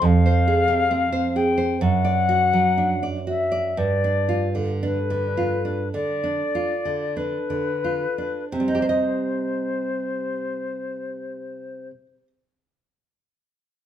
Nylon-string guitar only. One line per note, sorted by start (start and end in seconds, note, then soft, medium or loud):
0.02 1.77 F2 medium
0.26 0.61 C5 soft
0.48 0.83 G#4 soft
0.68 1.04 C3 soft
0.91 1.27 C4 soft
1.12 1.50 C5 soft
1.36 1.73 G#4 soft
1.58 1.82 C5 soft
1.81 3.73 F#2 medium
2.04 2.44 D5 soft
2.29 2.68 F#4 soft
2.53 2.93 F#3 soft
2.78 3.17 D4 soft
3.03 3.43 D5 soft
3.27 3.67 F#4 soft
3.52 3.77 D5 soft
3.77 5.89 G2 medium
4.04 4.46 D4 soft
4.29 4.71 F4 soft
4.55 4.98 D3 soft
4.83 5.26 D4 soft
5.10 5.54 D3 soft
5.37 5.82 F4 soft
5.65 6.11 D4 soft
5.94 6.42 D3 soft
6.24 6.73 D4 soft
6.55 7.05 F4 soft
6.85 7.37 D3 soft
7.17 7.71 D4 soft
7.50 8.05 D3 soft
7.84 8.40 F4 soft
8.18 8.53 D4 soft
8.52 11.90 C3 soft
8.60 11.98 G3 soft
8.68 12.06 D#4 soft
8.75 8.82 G4 soft
8.82 8.89 C5 soft
8.89 12.27 D#5 soft